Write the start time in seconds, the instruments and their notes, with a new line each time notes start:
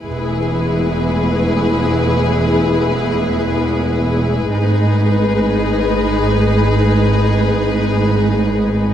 0.03 double bass section E1, cello section E2, viola section G#3 E4, violin section G#4 B4
4.52 double bass section G#1, cello section G#2, viola section G#3 D#4, violin section G#4 B4